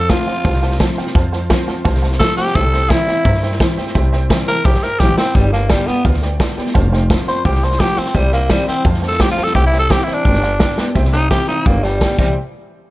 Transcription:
Already playing: F2 A4
0.10 F3 A3 C4 F4 C5 F5 A5, kick, snare, hi-hat pedal
0.27 C4 F4 C5 F5 C6, muted upright bass stroke, snare
0.44 C2 C3 C5 F5 A5, kick, snare
0.54 snare
0.62 C5 F5 A5, snare
0.71 snare
0.79 F3 A3 C4 F4 C5 F5 A5, kick, snare, hi-hat pedal
0.97 C4 F4 C5 F5 G5, muted upright bass stroke, snare
1.07 snare
1.15 F2 C5 F5 A5, kick, snare
1.32 C5 F5 A5, snare
1.50 F3 A3 C4 F4 C5 F5 C6, kick, snare, hi-hat pedal
1.67 C4 F4 C5 F5 A5, muted upright bass stroke, snare
1.84 C2 C3 C5 F5 A5, kick, snare
1.95 snare
2.02 C5 F5 A5, snare
2.12 snare
2.19 F3 A3 C4 F4 A4 C5 F5 C6, kick, snare, hi-hat pedal
2.37 G4 C5 F5 A5, muted upright bass stroke, snare
2.47 snare
2.54 C2 C3 A4 C5 E5 G5, kick, snare
2.73 C5 E5 G5, snare
2.90 E3 G3 C4 E4 C5 E5 G5, kick, snare, hi-hat pedal
3.07 C4 E4 C5 E5 G5, muted upright bass stroke, snare
3.25 G2 C5 E5 A#5, kick, snare
3.34 snare
3.43 C5 E5 G5, snare
3.52 snare
3.59 E3 G3 C4 E4 C5 E5 G5, kick, snare, hi-hat pedal
3.77 C4 E4 C5 E5 G5, muted upright bass stroke, snare
3.87 snare
3.95 C2 C3 C5 E5 G5, kick, snare
4.12 C5 E5 G5, snare
4.29 E3 G3 C4 E4 C5 E5 G5, kick, snare, hi-hat pedal
4.47 C4 E4 A#4 C5 E5 G5, muted upright bass stroke, snare
4.64 A#1 G2 G4 C5 E5 A5, kick, snare
4.74 snare
4.82 A#4 C5 E5 G5, snare
4.99 A1 E3 G3 C4 E4 G4 C5 E5 G5, kick, snare, hi-hat pedal
5.17 C4 E4 C5 E5 A5, muted upright bass stroke, snare
5.35 G1 G2 G3 B4 D5 G5, kick, snare
5.53 A#3 B4 D5 A5, snare
5.69 D3 G3 B3 G4 B4 D5 G5, kick, snare, hi-hat pedal
5.87 B3 G4 B4 D5 G5, muted upright bass stroke, snare
6.04 D2 D3 B4 D5 F5, kick, snare
6.13 snare
6.22 B4 D5 G5, snare
6.40 D3 G3 B3 G4 B4 D5 A5, kick, snare, hi-hat pedal
6.57 B3 G4 B4 D5 G5, muted upright bass stroke, snare
6.67 snare
6.74 F1 F2 C5 F5 A5, kick, snare
6.92 C5 F5 G5, snare
7.09 F3 A3 C4 F4 C5 F5 A5, kick, snare, hi-hat pedal
7.27 C4 F4 C5 F5 G5, muted upright bass stroke, snare
7.45 C2 C3 G4 C5 F5 G5, kick, snare
7.55 snare
7.63 C5 F5 A5, snare
7.71 snare
7.80 F3 A3 C4 F4 G4 C5 F5 A5, kick, snare, hi-hat pedal
7.97 C4 F4 C5 F5 A5, muted upright bass stroke, snare
8.06 snare
8.14 C2 C3 G3 C5 E5 G5, kick, snare
8.32 A#3 C5 E5 G5, snare
8.50 E3 G3 C4 E4 C5 E5 G5, kick, snare, hi-hat pedal
8.67 C4 C5 E5 G5, muted upright bass stroke, snare
8.84 F2 C5 F5 A5, kick, snare
8.94 snare
9.02 C5 F5 A5, snare
9.08 A4, snare
9.20 F3 A3 C4 F4 G4 C5 F5 G5, kick, snare, hi-hat pedal
9.31 F4
9.37 C4 F4 C5 F5 A5, muted upright bass stroke, snare
9.44 A4, snare
9.55 C2 C3 G4 C5 E5 G5, kick, snare
9.67 E4
9.73 C5 E5 G5, snare
9.79 A4
9.90 E3 G3 C4 E4 G4 C5 E5 G5, kick, snare, hi-hat pedal
10.04 E4 C5 E5, muted upright bass stroke
10.08 G5, snare
10.13 D4
10.25 G1 G2 B4 D5 G5, kick, snare
10.34 snare
10.42 B4 D5 F5, snare
10.59 D3 G3 B3 G4 B4 D5 G5, kick, snare, hi-hat pedal
10.77 B3 G4 B4 D5 G5, muted upright bass stroke, snare
10.95 C2 C3 C5 E5 G5, kick, snare
11.05 snare
11.13 D#4 C5 E5 G5, snare
11.30 E3 G3 C4 E4 G4 C5 E5 G5, kick, snare, hi-hat pedal
11.48 C4 D#4 E4 C5 E5 G5, muted upright bass stroke, snare
11.65 G1 A#3 B4 D5 G5, kick, snare
11.83 G3 B4 D5 A5, snare
12.01 D3 G3 B3 G4 B4 D5 G5, kick, snare, hi-hat pedal
12.18 C2 C3 E3 G3 C4 E4 C5 E5 G5, kick, crash

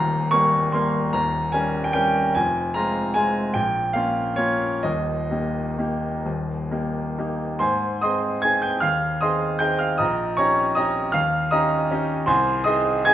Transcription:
Already playing: D#1 D#2 A#5
0.31 G3 A#3 A#4 C#6
0.72 G3 A#3 A#4 C6
1.13 D#1 D#2 A#5
1.52 G3 C#4 A#4 G#5
1.84 G5
1.93 G3 C#4 A#4 G5
2.35 F1 F2 G#5
2.74 G#3 C4 F4 A#5
3.14 G#3 C4 F4 G#5
3.54 A#1 A#2 G5
3.93 A#3 C#4 F4 F5
4.36 A#3 C#4 F4 C#5
4.83 D#1 D#2 D#5
5.31 A#3 D#4 G4
5.79 A#3 D#4 G4
6.26 D#1 D#2
6.71 A#3 D#4 G4
7.18 A#3 D#4 G4
7.59 G#2 C5 G#5 C6
8.01 C4 D#4 G#4 D#5 C6 D#6
8.42 C4 D#4 G#4 G#5 G#6
8.62 G5 G6
8.80 D#2 F5 F6
9.21 C4 D#4 G#4 D#5 C6 D#6
9.59 C4 D#4 G#4 G5 G6
9.79 F5 F6
9.98 A#1 D#5 A#5 D#6
10.37 C#4 D#4 G4 C#5 A#5 C#6
10.75 C#4 D#4 G4 D#5 A#5 D#6
11.12 D#2 F5 F6
11.51 C#4 D#4 G4 D#5 A#5 D#6
11.91 C#4 D#4 G4
12.26 C2 C5 G#5 C6
12.64 C4 D#4 G#4 D#5 C6 D#6
13.05 C4 D#4 G#4 G#5 G#6

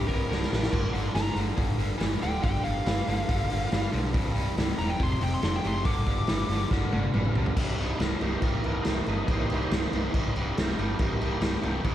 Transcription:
Already playing: E3 C4 D#4 A#4
0.08 C1 C2 G2 A#4, kick, open hi-hat
0.28 C1 C2 A2, snare
0.42 snare
0.50 A1 C2 G2, snare
0.63 snare
0.71 G1 G2 D3 G3 B3 F4 A#4, kick, crash
0.93 G1 G2 D3, open hi-hat
1.14 G1 G2 E3 A#5, snare, open hi-hat
1.35 G1 G2 D3, open hi-hat
1.56 G1 G2 D3, kick, open hi-hat
1.78 G1 G2 D3, open hi-hat
1.98 G1 G2 E3, snare, open hi-hat
2.21 D1 G2 D3 G5, open hi-hat
2.42 G1 G2 D3 G5, kick, open hi-hat
2.64 G1 G2 D3 F5, open hi-hat
2.86 G1 G2 E3, snare, open hi-hat
3.07 G1 G2 D3, open hi-hat
3.29 G1 G2 D3, kick, open hi-hat
3.50 G1 G2 D3, open hi-hat
3.72 G1 G2 E3, snare, open hi-hat
3.92 B1 G2 D3, open hi-hat
4.12 C1 C2 G2 E3 C4 D#4 A#4, kick, open hi-hat
4.35 C1 C2 G2, open hi-hat
4.57 C1 C2 A2, snare, open hi-hat
4.78 E1 C2 G2 A#5, open hi-hat
4.90 G5
4.98 F1 F2 C3 F3 A3 D#4 G#4, kick, open hi-hat
5.03 C6
5.13 C6
5.21 F1 F2 C3 G5, open hi-hat
5.34 C6
5.42 F1 F2 D3 C6, snare, open hi-hat
5.56 G5
5.64 F#1 F2 C3 C6, open hi-hat
5.83 G1 G2 D3 G3 B3 F4 A#4 D6, kick, open hi-hat
6.06 G1 G2 D3, kick, open hi-hat
6.27 G1 G2 E3, snare, open hi-hat
6.49 G1 G2 D3, open hi-hat
6.71 G1 G2 D3, kick, snare
6.92 G1 G2 D3, high tom
7.14 G1 G2 E3, mid tom
7.25 mid tom
7.35 B1 G2 D3, floor tom
7.46 floor tom
7.57 C1 C2 G2, kick, crash
7.78 C1 C2 G2 D#4, crash
7.99 C1 C2 A2 A#4, snare, crash
8.20 C1 C2 G2 E3 A#3 D#4 G4, crash
8.42 C1 C2 G2 A#4, kick, crash
8.64 C1 C2 G2, crash
8.83 C1 C2 A2 C5, snare, crash
9.06 G1 C2 G2 D#5, crash
9.26 C1 C2 G2 E3 A#3 D#4 C5, kick, crash
9.50 C1 C2 G2, crash
9.71 C1 C2 A2, snare, crash
9.93 C1 C2 G2, crash
10.14 C1 C2 G2 E3 A#3 D#4, kick, crash
10.36 C1 C2 G2, crash
10.56 C1 C2 A2 G4 A4, snare, crash
10.61 A#4
10.79 G1 C2 G2 G4 A#4, crash
10.98 C1 C2 G2 E3 A#3 D#4 G4 A#4, kick, crash
11.20 C1 C2 G2 A#3 G4, crash
11.40 C1 C2 A2 A#3, snare, crash
11.45 G4
11.61 C1 C2 G2 A#3 G4, crash
11.83 C1 C2 G2 G3 D#4, kick, crash

